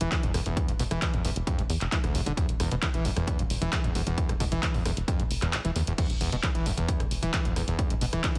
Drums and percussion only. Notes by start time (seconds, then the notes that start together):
0.01 closed hi-hat
0.12 kick, clap, closed hi-hat
0.23 closed hi-hat
0.34 cross-stick, open hi-hat
0.46 closed hi-hat
0.57 kick, closed hi-hat
0.68 closed hi-hat
0.80 open hi-hat
0.91 cross-stick, closed hi-hat
1.02 kick, clap, closed hi-hat
1.14 closed hi-hat
1.25 open hi-hat
1.36 closed hi-hat
1.47 kick, cross-stick, closed hi-hat
1.59 closed hi-hat
1.70 open hi-hat
1.81 clap, closed hi-hat
1.92 kick, clap, closed hi-hat
2.04 cross-stick, closed hi-hat
2.15 open hi-hat
2.26 closed hi-hat
2.37 kick, closed hi-hat
2.49 closed hi-hat
2.60 cross-stick, open hi-hat
2.71 closed hi-hat
2.82 kick, clap, closed hi-hat
2.94 closed hi-hat
3.05 open hi-hat
3.17 cross-stick, closed hi-hat
3.27 kick, closed hi-hat
3.39 closed hi-hat
3.50 open hi-hat
3.62 closed hi-hat
3.73 kick, cross-stick, clap, closed hi-hat
3.84 closed hi-hat
3.95 open hi-hat
4.07 closed hi-hat
4.18 kick, closed hi-hat
4.29 cross-stick, closed hi-hat
4.40 kick, open hi-hat
4.52 closed hi-hat
4.63 kick, clap, closed hi-hat
4.74 open hi-hat
4.86 cross-stick, open hi-hat
4.97 closed hi-hat
5.08 kick, closed hi-hat
5.20 closed hi-hat
5.31 open hi-hat
5.42 cross-stick, clap, closed hi-hat
5.53 clap, closed hi-hat
5.65 closed hi-hat
5.76 open hi-hat
5.87 closed hi-hat
5.98 kick, closed hi-hat, crash
6.10 closed hi-hat
6.21 open hi-hat
6.32 closed hi-hat
6.43 kick, cross-stick, clap, closed hi-hat
6.55 closed hi-hat
6.66 open hi-hat
6.78 closed hi-hat
6.88 kick, closed hi-hat
7.00 cross-stick, closed hi-hat
7.11 open hi-hat
7.23 closed hi-hat
7.34 kick, clap, closed hi-hat
7.45 closed hi-hat
7.56 cross-stick, open hi-hat
7.68 closed hi-hat
7.79 kick, closed hi-hat
7.90 closed hi-hat
8.01 open hi-hat
8.13 cross-stick, closed hi-hat
8.24 kick, clap, closed hi-hat
8.35 closed hi-hat